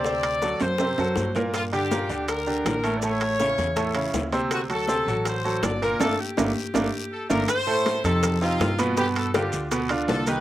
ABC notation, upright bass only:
X:1
M:4/4
L:1/8
Q:1/4=162
K:Gm
V:1 name="Upright bass" clef=bass
D,,3 ^F,,2 F,, G,,2- | G,,3 D,,3 A,,,2- | A,,,3 =E,,3 D,,2- | D,,3 A,,,3 G,,,2 |
G,,, z G,,, z G,,, z2 G,,, | z3 F,,3 G,,2- | G,,3 D,,3 C,,2 |]